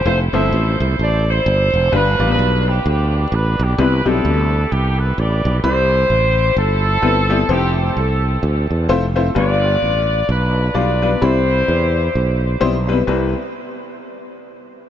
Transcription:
0.06 fretless electric bass F1, upright piano A3 C4 E4 F4 C5, horn section E4 A4 C5
0.33 fretless electric bass G1, upright piano F3 A3 C4 E4 C5, horn section A4 C5 E5
0.53 fretless electric bass A1
0.80 fretless electric bass C2
0.99 fretless electric bass A1, horn section A4 D5
1.27 horn section E4 A4 C5
1.46 fretless electric bass G1
1.74 fretless electric bass F1
1.92 fretless electric bass G1, upright piano G2 G3 B3 D4 F4 B4, horn section D4 F4 B4
2.20 fretless electric bass A1, upright piano G3 A#3 D4 F4 D5
2.26 upright piano B3
2.30 horn section D4 F4 B4
2.39 fretless electric bass B1
2.68 horn section G4
2.86 fretless electric bass D2, horn section B3 D4 G4
3.14 horn section G4
3.32 fretless electric bass A1, horn section B4
3.60 fretless electric bass B1, horn section G4
3.78 fretless electric bass C2, upright piano C3 G3 B3 C4 E4 B4, horn section E4 G4 B4
4.05 fretless electric bass B1, upright piano G3 B3 C4 D#4 G4, horn section E4 A4
4.11 upright piano E4
4.25 fretless electric bass D2
4.71 fretless electric bass C2, horn section B3 E4 G4
4.98 horn section B4
5.17 fretless electric bass A1, horn section G4 B4 D5
5.45 fretless electric bass B1
5.63 fretless electric bass C2, upright piano C3 G3 C4 E4 B5, horn section E4 G4 C5
6.10 fretless electric bass A1
6.57 fretless electric bass G1, horn section E4 A4
7.02 fretless electric bass G1, upright piano G3 B3 C4 E4 B4
7.30 upright piano G3 B3 C4 E4 G4
7.49 fretless electric bass F1, upright piano F3 A3 C4 E4 C5, horn section C4 E4 G4
7.76 horn section G4
7.96 fretless electric bass C2, horn section C4 E4 A4
8.43 fretless electric bass D2
8.71 fretless electric bass E2
8.89 fretless electric bass F1, upright piano A3 C4 E4 F4 C5
9.15 upright piano A3 C4 E4 F4 C5
9.35 fretless electric bass G1, upright piano G2 G3 B3 D4 F4 B4, horn section F4 B4 D5
9.82 fretless electric bass A1
10.29 fretless electric bass B1, horn section D4 F4 B4
10.74 fretless electric bass B1, upright piano G3 B3 D4 F4 D5, horn section F4 B4 D5
11.02 upright piano G3 B3 D4 F4 B4
11.21 fretless electric bass C2, upright piano C3 G3 C4 E4 B5, horn section E4 G4 C5
11.68 fretless electric bass E2
12.15 fretless electric bass B1
12.60 fretless electric bass B1, upright piano G3 B3 C4 E4 C5
12.88 upright piano G3 B3 C4 E4 B4
13.07 upright piano C2 G3 C4 E4 B4, fretless electric bass C2

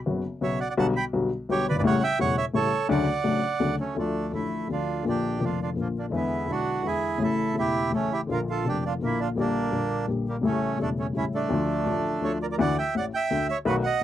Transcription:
0.06 grand piano F#1 F#2 C#3 F#3 B3 F#4
0.41 grand piano B1 B2 C#3 F#3 B3 F#4, bandoneon C#5 E5
0.60 bandoneon D5 F#5
0.70 bandoneon D5 F#5
0.77 grand piano B1 B2 D3 G3 B3 F#4, bandoneon F#5 A5
0.96 bandoneon G5 B5
1.13 grand piano B1 B2 D3 G3 B3 F#4
1.49 grand piano B1 B2 D3 G3 B3 F#4, bandoneon G4 C#5
1.69 grand piano F#1, bandoneon B4 D5
1.76 grand piano G1, bandoneon B4 D5
1.80 grand piano G#1 A1 A2 C#3 G3
1.84 grand piano A3 E4, bandoneon C#5 F#5
2.03 bandoneon E5 G5
2.19 grand piano E1 E2 C#3 G3 A3 E4, bandoneon C#5 F#5
2.38 bandoneon C#5 E5
2.54 grand piano A1 A2 C#3 G3 A3 E4, bandoneon A4 C#5
2.89 grand piano D2 C#3 D3 F#3 A3 D4, bandoneon D5 F#5
3.24 grand piano A1 A2 C#3 F#3 A3 D4
3.60 grand piano D2 C#3 D3 F#3 A3 D4
3.80 bandoneon A3 C#4
3.95 grand piano D2 D3 F3 A3 F4, bandoneon A3
3.99 bandoneon D4
4.31 grand piano A1 A2 D3 F3 A3 D4, bandoneon A3 E4
4.69 grand piano D2 D3 F3 A3 F4, bandoneon D4 F4
5.03 grand piano A#1 A#2 D3 F3 A#3 F4
5.09 bandoneon D4 G4
5.38 grand piano F1 F2 D3 F3 A#3
5.42 bandoneon D4 F4, grand piano F4
5.62 bandoneon D4 F4
5.74 grand piano A#1 A#2 D3 F3 A#3
5.78 bandoneon F3 A#3, grand piano F4
5.98 bandoneon A#3 D4
6.10 grand piano E2 D3 E3 G#3 B3 E4
6.15 bandoneon B3 E4
6.46 grand piano B1 B2 D3 G#3 B3 E4
6.51 bandoneon D4 F#4
6.82 grand piano E2 D3 E3 G#3 B3 E4
6.86 bandoneon E4 G#4
7.18 grand piano A1 A2 C#3 E3 A3
7.22 grand piano E4, bandoneon E4 A4
7.53 grand piano E1 E2 C#3 E3 A3 E4
7.58 bandoneon E4 G4
7.90 grand piano A1 A2 C#3 E3 A3 E4, bandoneon A3
7.96 bandoneon C#4
8.12 bandoneon E4 G4
8.27 grand piano A#1 A#2 D3 F3 A#3
8.31 grand piano F4, bandoneon F4 A#4
8.50 bandoneon F4 A4
8.63 grand piano F1 F2 D3 F3 A#3 F4
8.68 bandoneon D4 G4
8.86 bandoneon D4 F4
8.99 grand piano A#1 A#2 D3 F3 A#3, bandoneon A#3
9.04 bandoneon E4, grand piano F4
9.20 bandoneon D4 F4
9.35 grand piano A#1 A#2 D3 G3 A#3, bandoneon A#3
9.39 bandoneon D4, grand piano G4
9.70 grand piano A#1 A#2 D3 G3 A#3 G4
10.06 grand piano A#1 A#2 D3 G3 A#3 G4
10.28 bandoneon G3 A#3
10.41 grand piano A1 A2 C#3 G3 A3 E4
10.45 bandoneon A3 C#4
10.77 grand piano E1 E2 C#3 G3 A3 E4, bandoneon A3
10.82 bandoneon D4
10.99 bandoneon A3 C#4
11.13 grand piano A1 A2 C#3 G3 A3 E4
11.17 bandoneon C#4 E4
11.34 bandoneon A3 D4
11.48 grand piano D2 D3 F3 A3 F4
11.85 grand piano A1 A2 D3 F3 A3 F4
12.20 grand piano D2 D3 F3 A3 F4
12.24 bandoneon A4 C#5
12.42 bandoneon A#4 D5
12.52 bandoneon A#4 D5
12.58 grand piano D2 D3 E3 A3 E4, bandoneon D5 F#5
12.78 bandoneon E5 G5
12.95 grand piano A1 A2, bandoneon D5 F#5
13.14 bandoneon E5 G5
13.31 grand piano D2 D3
13.49 bandoneon C#5 E5
13.65 grand piano B1 B2 D#3 A3 B3 F#4, bandoneon F#4 B4
13.83 bandoneon D#5 F#5

